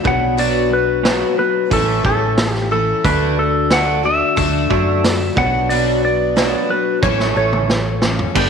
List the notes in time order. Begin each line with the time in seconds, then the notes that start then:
0.04 B1 B2 F#3 B3 D4 F#4 F#5, kick
0.37 B2 F#3 B3 D4 F#4 D5, open hi-hat
0.70 B2 F#3 B4
1.03 B2 F#3 B3 D4 F#4, snare, open hi-hat
1.38 B2 F#3 B4
1.71 A1 A2 E3 A3 C#4 E4 A4, kick, open hi-hat
2.05 A1 A2 E3 A3 C#4 E4 A4, kick
2.38 A2 E3, snare, open hi-hat
2.53 G4, snare
2.71 A2 E3 A3 C#4 E4 A4
3.05 D2 D3 A3 D4 F#4 B4, kick, open hi-hat
3.38 D3 A3 A4
3.70 D3 A3 D4 F#4 F#5, snare, open hi-hat
4.03 D3 A3 D4 F#4 E5
4.36 D2 D3 A3 D4 F#4, kick, open hi-hat
4.70 F#2 D3 A3 D4 F#4, kick
5.04 D3 A3, snare, open hi-hat
5.36 B1 B2 F#3 B3 D4 F#4 F#5, kick
5.69 B2 F#3 B3 D4 F#4 D5, open hi-hat
6.05 B2 F#3 D5
6.36 B2 F#3 B3 D4 F#4, snare, open hi-hat
6.69 B2 F#3 B4
7.03 A1 A2 E3 A3 C#4 A4 C#5, kick, high tom
7.20 snare
7.35 A1 A2 E3 A3 C#4 A4 C#5
7.53 mid tom
7.68 A2 E3, snare
8.02 A2 E3 A3 C#4 A4, snare
8.19 floor tom
8.35 G1 G2 D3 G3 B3 D4 G4, kick, crash